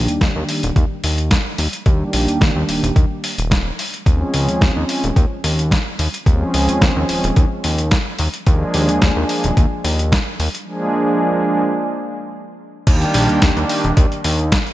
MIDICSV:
0, 0, Header, 1, 4, 480
1, 0, Start_track
1, 0, Key_signature, -3, "major"
1, 0, Tempo, 550459
1, 1626, Time_signature, 4, 2, 24, 8
1, 12846, End_track
2, 0, Start_track
2, 0, Title_t, "Analog synth pad"
2, 0, Program_c, 0, 89
2, 0, Note_on_c, 0, 51, 94
2, 0, Note_on_c, 0, 55, 84
2, 0, Note_on_c, 0, 58, 87
2, 0, Note_on_c, 0, 62, 88
2, 0, Note_on_c, 0, 67, 104
2, 396, Note_off_c, 0, 51, 0
2, 398, Note_off_c, 0, 55, 0
2, 399, Note_off_c, 0, 58, 0
2, 403, Note_off_c, 0, 62, 0
2, 404, Note_off_c, 0, 67, 0
2, 420, Note_on_c, 0, 51, 81
2, 425, Note_on_c, 0, 55, 74
2, 426, Note_on_c, 0, 58, 75
2, 426, Note_on_c, 0, 62, 75
2, 430, Note_on_c, 0, 67, 92
2, 529, Note_off_c, 0, 51, 0
2, 531, Note_off_c, 0, 55, 0
2, 532, Note_off_c, 0, 58, 0
2, 532, Note_off_c, 0, 62, 0
2, 534, Note_off_c, 0, 67, 0
2, 1616, Note_on_c, 0, 51, 96
2, 1620, Note_on_c, 0, 55, 89
2, 1624, Note_on_c, 0, 58, 88
2, 1630, Note_on_c, 0, 62, 89
2, 1633, Note_on_c, 0, 67, 106
2, 2315, Note_off_c, 0, 51, 0
2, 2316, Note_off_c, 0, 55, 0
2, 2318, Note_off_c, 0, 58, 0
2, 2322, Note_off_c, 0, 62, 0
2, 2323, Note_off_c, 0, 67, 0
2, 2342, Note_on_c, 0, 51, 81
2, 2345, Note_on_c, 0, 55, 75
2, 2347, Note_on_c, 0, 58, 74
2, 2349, Note_on_c, 0, 62, 77
2, 2350, Note_on_c, 0, 67, 90
2, 2450, Note_off_c, 0, 51, 0
2, 2451, Note_off_c, 0, 55, 0
2, 2452, Note_off_c, 0, 58, 0
2, 2453, Note_off_c, 0, 62, 0
2, 2454, Note_off_c, 0, 67, 0
2, 3541, Note_on_c, 0, 53, 95
2, 3545, Note_on_c, 0, 56, 89
2, 3549, Note_on_c, 0, 60, 88
2, 3555, Note_on_c, 0, 61, 90
2, 3558, Note_on_c, 0, 68, 104
2, 4237, Note_off_c, 0, 53, 0
2, 4239, Note_off_c, 0, 56, 0
2, 4241, Note_off_c, 0, 60, 0
2, 4244, Note_off_c, 0, 61, 0
2, 4246, Note_off_c, 0, 68, 0
2, 4262, Note_on_c, 0, 53, 83
2, 4262, Note_on_c, 0, 56, 77
2, 4266, Note_on_c, 0, 60, 75
2, 4268, Note_on_c, 0, 61, 76
2, 4271, Note_on_c, 0, 68, 90
2, 4370, Note_off_c, 0, 53, 0
2, 4370, Note_off_c, 0, 56, 0
2, 4372, Note_off_c, 0, 60, 0
2, 4373, Note_off_c, 0, 61, 0
2, 4374, Note_off_c, 0, 68, 0
2, 5455, Note_on_c, 0, 53, 96
2, 5461, Note_on_c, 0, 56, 87
2, 5465, Note_on_c, 0, 60, 89
2, 5469, Note_on_c, 0, 61, 88
2, 5475, Note_on_c, 0, 68, 108
2, 6154, Note_off_c, 0, 53, 0
2, 6157, Note_off_c, 0, 56, 0
2, 6159, Note_off_c, 0, 60, 0
2, 6161, Note_off_c, 0, 61, 0
2, 6164, Note_off_c, 0, 68, 0
2, 6184, Note_on_c, 0, 53, 80
2, 6187, Note_on_c, 0, 56, 75
2, 6187, Note_on_c, 0, 60, 76
2, 6191, Note_on_c, 0, 61, 75
2, 6194, Note_on_c, 0, 68, 90
2, 6291, Note_off_c, 0, 53, 0
2, 6292, Note_off_c, 0, 56, 0
2, 6292, Note_off_c, 0, 60, 0
2, 6294, Note_off_c, 0, 61, 0
2, 6296, Note_off_c, 0, 68, 0
2, 7377, Note_on_c, 0, 53, 94
2, 7383, Note_on_c, 0, 56, 89
2, 7387, Note_on_c, 0, 58, 86
2, 7390, Note_on_c, 0, 62, 86
2, 7395, Note_on_c, 0, 68, 106
2, 8075, Note_off_c, 0, 53, 0
2, 8078, Note_off_c, 0, 56, 0
2, 8080, Note_off_c, 0, 58, 0
2, 8081, Note_off_c, 0, 62, 0
2, 8084, Note_off_c, 0, 68, 0
2, 8097, Note_on_c, 0, 53, 85
2, 8102, Note_on_c, 0, 56, 74
2, 8102, Note_on_c, 0, 58, 77
2, 8104, Note_on_c, 0, 62, 77
2, 8108, Note_on_c, 0, 68, 91
2, 8207, Note_off_c, 0, 53, 0
2, 8210, Note_off_c, 0, 56, 0
2, 8210, Note_off_c, 0, 58, 0
2, 8211, Note_off_c, 0, 62, 0
2, 8213, Note_off_c, 0, 68, 0
2, 9295, Note_on_c, 0, 53, 96
2, 9300, Note_on_c, 0, 56, 88
2, 9305, Note_on_c, 0, 58, 88
2, 9310, Note_on_c, 0, 62, 88
2, 9315, Note_on_c, 0, 68, 109
2, 9994, Note_off_c, 0, 53, 0
2, 9997, Note_off_c, 0, 56, 0
2, 9999, Note_off_c, 0, 58, 0
2, 10002, Note_off_c, 0, 62, 0
2, 10004, Note_off_c, 0, 68, 0
2, 10023, Note_on_c, 0, 53, 85
2, 10025, Note_on_c, 0, 56, 76
2, 10026, Note_on_c, 0, 58, 74
2, 10028, Note_on_c, 0, 62, 76
2, 10032, Note_on_c, 0, 68, 89
2, 10130, Note_off_c, 0, 53, 0
2, 10131, Note_off_c, 0, 56, 0
2, 10132, Note_off_c, 0, 58, 0
2, 10133, Note_off_c, 0, 62, 0
2, 10135, Note_off_c, 0, 68, 0
2, 11213, Note_on_c, 0, 51, 99
2, 11219, Note_on_c, 0, 55, 90
2, 11222, Note_on_c, 0, 58, 88
2, 11227, Note_on_c, 0, 62, 90
2, 11231, Note_on_c, 0, 67, 107
2, 11913, Note_off_c, 0, 51, 0
2, 11916, Note_off_c, 0, 55, 0
2, 11917, Note_off_c, 0, 58, 0
2, 11920, Note_off_c, 0, 62, 0
2, 11922, Note_off_c, 0, 67, 0
2, 11934, Note_on_c, 0, 51, 86
2, 11936, Note_on_c, 0, 55, 78
2, 11939, Note_on_c, 0, 58, 76
2, 11942, Note_on_c, 0, 62, 75
2, 11943, Note_on_c, 0, 67, 92
2, 12046, Note_off_c, 0, 51, 0
2, 12047, Note_off_c, 0, 55, 0
2, 12048, Note_off_c, 0, 58, 0
2, 12050, Note_off_c, 0, 62, 0
2, 12050, Note_off_c, 0, 67, 0
2, 12846, End_track
3, 0, Start_track
3, 0, Title_t, "Analog synth bass"
3, 0, Program_c, 1, 38
3, 76, Note_on_c, 1, 39, 43
3, 164, Note_off_c, 1, 39, 0
3, 185, Note_on_c, 1, 39, 90
3, 266, Note_off_c, 1, 39, 0
3, 313, Note_on_c, 1, 39, 101
3, 383, Note_off_c, 1, 39, 0
3, 556, Note_on_c, 1, 27, 101
3, 624, Note_off_c, 1, 27, 0
3, 662, Note_on_c, 1, 39, 97
3, 744, Note_off_c, 1, 39, 0
3, 906, Note_on_c, 1, 39, 78
3, 1197, Note_off_c, 1, 39, 0
3, 1382, Note_on_c, 1, 39, 86
3, 1464, Note_off_c, 1, 39, 0
3, 1622, Note_on_c, 1, 39, 98
3, 1780, Note_off_c, 1, 39, 0
3, 1865, Note_on_c, 1, 34, 89
3, 1985, Note_off_c, 1, 34, 0
3, 1990, Note_on_c, 1, 39, 42
3, 2081, Note_off_c, 1, 39, 0
3, 2101, Note_on_c, 1, 39, 91
3, 2184, Note_off_c, 1, 39, 0
3, 2232, Note_on_c, 1, 39, 103
3, 2302, Note_off_c, 1, 39, 0
3, 2340, Note_on_c, 1, 27, 44
3, 2446, Note_off_c, 1, 27, 0
3, 2470, Note_on_c, 1, 27, 98
3, 2542, Note_off_c, 1, 27, 0
3, 2581, Note_on_c, 1, 39, 96
3, 2664, Note_off_c, 1, 39, 0
3, 2951, Note_on_c, 1, 27, 100
3, 3237, Note_off_c, 1, 27, 0
3, 3542, Note_on_c, 1, 39, 99
3, 3700, Note_off_c, 1, 39, 0
3, 3785, Note_on_c, 1, 37, 89
3, 3910, Note_off_c, 1, 37, 0
3, 3916, Note_on_c, 1, 39, 42
3, 4004, Note_off_c, 1, 39, 0
3, 4024, Note_on_c, 1, 39, 90
3, 4105, Note_off_c, 1, 39, 0
3, 4155, Note_on_c, 1, 39, 102
3, 4224, Note_off_c, 1, 39, 0
3, 4392, Note_on_c, 1, 27, 99
3, 4463, Note_off_c, 1, 27, 0
3, 4502, Note_on_c, 1, 39, 98
3, 4584, Note_off_c, 1, 39, 0
3, 4743, Note_on_c, 1, 39, 76
3, 5036, Note_off_c, 1, 39, 0
3, 5225, Note_on_c, 1, 39, 85
3, 5306, Note_off_c, 1, 39, 0
3, 5460, Note_on_c, 1, 39, 99
3, 5619, Note_off_c, 1, 39, 0
3, 5705, Note_on_c, 1, 37, 87
3, 5832, Note_off_c, 1, 37, 0
3, 5837, Note_on_c, 1, 39, 44
3, 5925, Note_off_c, 1, 39, 0
3, 5942, Note_on_c, 1, 39, 96
3, 6024, Note_off_c, 1, 39, 0
3, 6074, Note_on_c, 1, 39, 107
3, 6143, Note_off_c, 1, 39, 0
3, 6185, Note_on_c, 1, 27, 43
3, 6289, Note_off_c, 1, 27, 0
3, 6311, Note_on_c, 1, 27, 103
3, 6382, Note_off_c, 1, 27, 0
3, 6422, Note_on_c, 1, 39, 99
3, 6504, Note_off_c, 1, 39, 0
3, 6666, Note_on_c, 1, 39, 79
3, 6957, Note_off_c, 1, 39, 0
3, 7144, Note_on_c, 1, 39, 85
3, 7225, Note_off_c, 1, 39, 0
3, 7384, Note_on_c, 1, 39, 99
3, 7541, Note_off_c, 1, 39, 0
3, 7625, Note_on_c, 1, 39, 92
3, 7753, Note_off_c, 1, 39, 0
3, 7758, Note_on_c, 1, 39, 44
3, 7846, Note_off_c, 1, 39, 0
3, 7864, Note_on_c, 1, 39, 95
3, 7945, Note_off_c, 1, 39, 0
3, 7993, Note_on_c, 1, 39, 106
3, 8063, Note_off_c, 1, 39, 0
3, 8234, Note_on_c, 1, 27, 102
3, 8303, Note_off_c, 1, 27, 0
3, 8345, Note_on_c, 1, 39, 102
3, 8426, Note_off_c, 1, 39, 0
3, 8583, Note_on_c, 1, 39, 81
3, 8875, Note_off_c, 1, 39, 0
3, 9065, Note_on_c, 1, 39, 83
3, 9146, Note_off_c, 1, 39, 0
3, 11222, Note_on_c, 1, 39, 96
3, 11380, Note_off_c, 1, 39, 0
3, 11462, Note_on_c, 1, 34, 92
3, 11586, Note_off_c, 1, 34, 0
3, 11591, Note_on_c, 1, 39, 44
3, 11682, Note_off_c, 1, 39, 0
3, 11702, Note_on_c, 1, 39, 94
3, 11784, Note_off_c, 1, 39, 0
3, 11829, Note_on_c, 1, 39, 101
3, 11901, Note_off_c, 1, 39, 0
3, 12072, Note_on_c, 1, 27, 104
3, 12142, Note_off_c, 1, 27, 0
3, 12182, Note_on_c, 1, 39, 101
3, 12264, Note_off_c, 1, 39, 0
3, 12421, Note_on_c, 1, 39, 82
3, 12714, Note_off_c, 1, 39, 0
3, 12846, End_track
4, 0, Start_track
4, 0, Title_t, "Drums"
4, 73, Note_on_c, 9, 42, 59
4, 160, Note_off_c, 9, 42, 0
4, 184, Note_on_c, 9, 36, 101
4, 184, Note_on_c, 9, 42, 47
4, 187, Note_on_c, 9, 38, 110
4, 271, Note_off_c, 9, 36, 0
4, 271, Note_off_c, 9, 42, 0
4, 274, Note_off_c, 9, 38, 0
4, 424, Note_on_c, 9, 46, 93
4, 511, Note_off_c, 9, 46, 0
4, 551, Note_on_c, 9, 42, 63
4, 638, Note_off_c, 9, 42, 0
4, 663, Note_on_c, 9, 36, 115
4, 663, Note_on_c, 9, 42, 48
4, 750, Note_off_c, 9, 42, 0
4, 751, Note_off_c, 9, 36, 0
4, 904, Note_on_c, 9, 46, 106
4, 991, Note_off_c, 9, 46, 0
4, 1030, Note_on_c, 9, 42, 60
4, 1118, Note_off_c, 9, 42, 0
4, 1140, Note_on_c, 9, 42, 50
4, 1143, Note_on_c, 9, 36, 107
4, 1143, Note_on_c, 9, 38, 118
4, 1227, Note_off_c, 9, 42, 0
4, 1230, Note_off_c, 9, 36, 0
4, 1230, Note_off_c, 9, 38, 0
4, 1381, Note_on_c, 9, 46, 95
4, 1468, Note_off_c, 9, 46, 0
4, 1510, Note_on_c, 9, 42, 59
4, 1597, Note_off_c, 9, 42, 0
4, 1621, Note_on_c, 9, 42, 48
4, 1623, Note_on_c, 9, 36, 121
4, 1708, Note_off_c, 9, 42, 0
4, 1710, Note_off_c, 9, 36, 0
4, 1859, Note_on_c, 9, 46, 107
4, 1946, Note_off_c, 9, 46, 0
4, 1991, Note_on_c, 9, 42, 57
4, 2078, Note_off_c, 9, 42, 0
4, 2102, Note_on_c, 9, 36, 102
4, 2104, Note_on_c, 9, 42, 47
4, 2107, Note_on_c, 9, 38, 109
4, 2189, Note_off_c, 9, 36, 0
4, 2191, Note_off_c, 9, 42, 0
4, 2194, Note_off_c, 9, 38, 0
4, 2343, Note_on_c, 9, 46, 91
4, 2430, Note_off_c, 9, 46, 0
4, 2475, Note_on_c, 9, 42, 61
4, 2562, Note_off_c, 9, 42, 0
4, 2582, Note_on_c, 9, 36, 117
4, 2583, Note_on_c, 9, 42, 49
4, 2669, Note_off_c, 9, 36, 0
4, 2670, Note_off_c, 9, 42, 0
4, 2823, Note_on_c, 9, 46, 103
4, 2910, Note_off_c, 9, 46, 0
4, 2951, Note_on_c, 9, 42, 61
4, 3038, Note_off_c, 9, 42, 0
4, 3062, Note_on_c, 9, 36, 107
4, 3064, Note_on_c, 9, 42, 50
4, 3067, Note_on_c, 9, 38, 115
4, 3149, Note_off_c, 9, 36, 0
4, 3151, Note_off_c, 9, 42, 0
4, 3154, Note_off_c, 9, 38, 0
4, 3305, Note_on_c, 9, 46, 92
4, 3392, Note_off_c, 9, 46, 0
4, 3434, Note_on_c, 9, 42, 57
4, 3521, Note_off_c, 9, 42, 0
4, 3542, Note_on_c, 9, 36, 112
4, 3544, Note_on_c, 9, 42, 49
4, 3630, Note_off_c, 9, 36, 0
4, 3631, Note_off_c, 9, 42, 0
4, 3781, Note_on_c, 9, 46, 104
4, 3869, Note_off_c, 9, 46, 0
4, 3911, Note_on_c, 9, 42, 58
4, 3998, Note_off_c, 9, 42, 0
4, 4023, Note_on_c, 9, 36, 99
4, 4025, Note_on_c, 9, 42, 46
4, 4028, Note_on_c, 9, 38, 106
4, 4110, Note_off_c, 9, 36, 0
4, 4112, Note_off_c, 9, 42, 0
4, 4115, Note_off_c, 9, 38, 0
4, 4263, Note_on_c, 9, 46, 86
4, 4350, Note_off_c, 9, 46, 0
4, 4393, Note_on_c, 9, 42, 62
4, 4480, Note_off_c, 9, 42, 0
4, 4502, Note_on_c, 9, 36, 110
4, 4504, Note_on_c, 9, 42, 48
4, 4590, Note_off_c, 9, 36, 0
4, 4591, Note_off_c, 9, 42, 0
4, 4744, Note_on_c, 9, 46, 102
4, 4831, Note_off_c, 9, 46, 0
4, 4875, Note_on_c, 9, 42, 62
4, 4962, Note_off_c, 9, 42, 0
4, 4982, Note_on_c, 9, 36, 100
4, 4986, Note_on_c, 9, 42, 49
4, 4989, Note_on_c, 9, 38, 109
4, 5069, Note_off_c, 9, 36, 0
4, 5073, Note_off_c, 9, 42, 0
4, 5076, Note_off_c, 9, 38, 0
4, 5224, Note_on_c, 9, 46, 90
4, 5311, Note_off_c, 9, 46, 0
4, 5354, Note_on_c, 9, 42, 60
4, 5442, Note_off_c, 9, 42, 0
4, 5462, Note_on_c, 9, 36, 112
4, 5466, Note_on_c, 9, 42, 51
4, 5549, Note_off_c, 9, 36, 0
4, 5553, Note_off_c, 9, 42, 0
4, 5702, Note_on_c, 9, 46, 100
4, 5789, Note_off_c, 9, 46, 0
4, 5831, Note_on_c, 9, 42, 61
4, 5918, Note_off_c, 9, 42, 0
4, 5942, Note_on_c, 9, 36, 94
4, 5943, Note_on_c, 9, 42, 50
4, 5946, Note_on_c, 9, 38, 105
4, 6030, Note_off_c, 9, 36, 0
4, 6030, Note_off_c, 9, 42, 0
4, 6034, Note_off_c, 9, 38, 0
4, 6182, Note_on_c, 9, 46, 84
4, 6269, Note_off_c, 9, 46, 0
4, 6313, Note_on_c, 9, 42, 65
4, 6400, Note_off_c, 9, 42, 0
4, 6421, Note_on_c, 9, 42, 50
4, 6423, Note_on_c, 9, 36, 109
4, 6508, Note_off_c, 9, 42, 0
4, 6510, Note_off_c, 9, 36, 0
4, 6661, Note_on_c, 9, 46, 96
4, 6748, Note_off_c, 9, 46, 0
4, 6788, Note_on_c, 9, 42, 63
4, 6875, Note_off_c, 9, 42, 0
4, 6898, Note_on_c, 9, 42, 51
4, 6902, Note_on_c, 9, 38, 113
4, 6903, Note_on_c, 9, 36, 99
4, 6986, Note_off_c, 9, 42, 0
4, 6989, Note_off_c, 9, 38, 0
4, 6990, Note_off_c, 9, 36, 0
4, 7138, Note_on_c, 9, 46, 87
4, 7225, Note_off_c, 9, 46, 0
4, 7269, Note_on_c, 9, 42, 62
4, 7356, Note_off_c, 9, 42, 0
4, 7381, Note_on_c, 9, 42, 53
4, 7383, Note_on_c, 9, 36, 114
4, 7468, Note_off_c, 9, 42, 0
4, 7471, Note_off_c, 9, 36, 0
4, 7620, Note_on_c, 9, 46, 96
4, 7707, Note_off_c, 9, 46, 0
4, 7750, Note_on_c, 9, 42, 65
4, 7837, Note_off_c, 9, 42, 0
4, 7862, Note_on_c, 9, 42, 53
4, 7864, Note_on_c, 9, 36, 93
4, 7865, Note_on_c, 9, 38, 112
4, 7949, Note_off_c, 9, 42, 0
4, 7952, Note_off_c, 9, 36, 0
4, 7953, Note_off_c, 9, 38, 0
4, 8102, Note_on_c, 9, 46, 85
4, 8189, Note_off_c, 9, 46, 0
4, 8231, Note_on_c, 9, 42, 68
4, 8318, Note_off_c, 9, 42, 0
4, 8345, Note_on_c, 9, 36, 103
4, 8345, Note_on_c, 9, 42, 51
4, 8432, Note_off_c, 9, 36, 0
4, 8432, Note_off_c, 9, 42, 0
4, 8585, Note_on_c, 9, 46, 96
4, 8672, Note_off_c, 9, 46, 0
4, 8714, Note_on_c, 9, 42, 64
4, 8801, Note_off_c, 9, 42, 0
4, 8825, Note_on_c, 9, 36, 100
4, 8827, Note_on_c, 9, 42, 54
4, 8830, Note_on_c, 9, 38, 117
4, 8913, Note_off_c, 9, 36, 0
4, 8914, Note_off_c, 9, 42, 0
4, 8917, Note_off_c, 9, 38, 0
4, 9066, Note_on_c, 9, 46, 84
4, 9153, Note_off_c, 9, 46, 0
4, 9196, Note_on_c, 9, 42, 65
4, 9283, Note_off_c, 9, 42, 0
4, 11222, Note_on_c, 9, 42, 96
4, 11222, Note_on_c, 9, 49, 104
4, 11223, Note_on_c, 9, 36, 120
4, 11309, Note_off_c, 9, 42, 0
4, 11309, Note_off_c, 9, 49, 0
4, 11310, Note_off_c, 9, 36, 0
4, 11350, Note_on_c, 9, 42, 42
4, 11437, Note_off_c, 9, 42, 0
4, 11460, Note_on_c, 9, 46, 106
4, 11548, Note_off_c, 9, 46, 0
4, 11592, Note_on_c, 9, 42, 41
4, 11679, Note_off_c, 9, 42, 0
4, 11701, Note_on_c, 9, 42, 96
4, 11702, Note_on_c, 9, 36, 98
4, 11704, Note_on_c, 9, 38, 120
4, 11788, Note_off_c, 9, 42, 0
4, 11789, Note_off_c, 9, 36, 0
4, 11791, Note_off_c, 9, 38, 0
4, 11831, Note_on_c, 9, 42, 42
4, 11918, Note_off_c, 9, 42, 0
4, 11942, Note_on_c, 9, 46, 91
4, 12029, Note_off_c, 9, 46, 0
4, 12071, Note_on_c, 9, 42, 42
4, 12158, Note_off_c, 9, 42, 0
4, 12181, Note_on_c, 9, 42, 96
4, 12182, Note_on_c, 9, 36, 115
4, 12268, Note_off_c, 9, 42, 0
4, 12269, Note_off_c, 9, 36, 0
4, 12311, Note_on_c, 9, 42, 42
4, 12398, Note_off_c, 9, 42, 0
4, 12421, Note_on_c, 9, 46, 106
4, 12508, Note_off_c, 9, 46, 0
4, 12550, Note_on_c, 9, 42, 40
4, 12637, Note_off_c, 9, 42, 0
4, 12661, Note_on_c, 9, 42, 99
4, 12663, Note_on_c, 9, 36, 107
4, 12664, Note_on_c, 9, 38, 127
4, 12748, Note_off_c, 9, 42, 0
4, 12750, Note_off_c, 9, 36, 0
4, 12751, Note_off_c, 9, 38, 0
4, 12790, Note_on_c, 9, 42, 41
4, 12846, Note_off_c, 9, 42, 0
4, 12846, End_track
0, 0, End_of_file